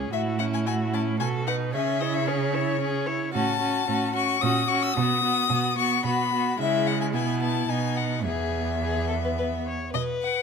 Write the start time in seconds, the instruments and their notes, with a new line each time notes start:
Already playing: cello C#2, viola C#4, violin G#4
0.13 cello A2, viola E4, violin F#4 E5
0.39 viola C#4, violin E4 F#5
0.54 violin G#5
0.66 viola E4, violin F#4 G#5
0.93 viola C#4, violin E4 A5
1.20 cello B2, viola F#4, violin A4 G#5
1.47 viola D#4, violin B4 F#5
1.74 cello C#3, viola C#4, violin G#4 E5
2.00 viola E4, violin C#5 D#5
2.14 violin E5
2.26 viola C#4, violin G#4 C#5
2.53 viola E4, violin C#5
2.81 viola C#4, violin G#4
3.06 viola E4, violin C#5
3.33 cello A2, viola C#4, violin F#4 A5
3.61 viola C#4, violin F#4
3.87 cello A2, viola C#4, violin F#4
4.14 viola C#4, violin F#4 C#6
4.41 cello A#2, viola C#4, violin F#4 D#6
4.68 viola C#4, violin F#4 C#6
4.83 violin E6
4.94 cello B2, viola B3, violin F#4 D#6
5.24 viola B3, violin F#4
5.50 cello B2, viola B3, violin F#4
5.78 viola B3, violin F#4 C#6
6.05 cello B2, viola B3, violin F#4 B5
6.33 viola B3, violin F#4
6.59 cello C#3, viola G#3, violin E4 E5
6.87 violin F#5
7.01 violin G#5
7.14 cello B2, viola B3, violin E4 G#5
7.42 violin A5
7.69 cello B2, viola B3, violin D#4 G#5
7.97 violin F#5
8.25 cello E2, viola B3, violin G#4 E5
8.82 violin G#4
9.09 violin A4
9.24 violin B4
9.38 violin B4
9.66 violin C#5
9.94 cello B2, violin B4 D#5
10.22 violin F#5